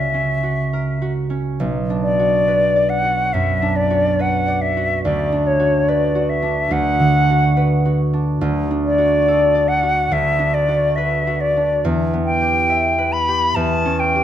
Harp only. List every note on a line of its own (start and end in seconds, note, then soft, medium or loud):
0.00 1.61 C#2 soft
0.00 1.62 C#3 soft
0.00 0.13 C#4 soft
0.00 0.42 F#4 soft
0.00 0.72 A#4 soft
0.14 1.29 C#4 soft
0.43 1.00 F#4 soft
0.73 1.62 A#4 soft
1.02 2.18 F#4 soft
1.30 1.61 C#4 soft
1.60 5.08 B1 soft
1.90 3.61 D4 soft
2.19 3.03 F#4 soft
2.48 4.18 B4 soft
2.76 4.47 D5 soft
3.05 3.89 F#4 soft
3.34 5.07 F#2 soft
3.62 5.31 D4 soft
3.90 4.76 F#4 soft
4.19 5.87 B4 soft
4.48 8.38 D5 soft
4.77 5.58 F#4 soft
5.05 6.69 D2 soft
5.32 6.41 D4 soft
5.60 6.14 F#4 soft
5.88 7.56 B4 soft
6.15 7.29 F#4 soft
6.42 8.12 D4 soft
6.71 8.40 D2 soft
7.00 8.46 D3 soft
7.30 7.84 F#4 soft
7.57 8.46 B4 soft
7.85 8.97 F#4 soft
8.13 8.70 D4 soft
8.41 10.10 D2 soft
8.71 10.38 D4 soft
8.98 9.82 F#4 soft
9.28 10.16 A4 soft
9.55 11.88 D5 soft
9.83 10.67 F#4 soft
10.11 11.88 D2 soft
10.39 11.55 D4 soft
10.68 11.26 F#4 soft
10.98 12.97 B4 soft
11.27 11.88 F#4 soft
11.57 11.88 D4 soft
11.85 13.55 E2 soft
12.13 13.60 B3 soft
12.41 13.27 G4 soft
12.69 14.24 E5 soft
12.98 13.60 B4 soft
13.28 14.14 G4 soft
13.56 14.24 E2 soft
13.85 14.24 C#4 soft
14.15 14.24 G4 soft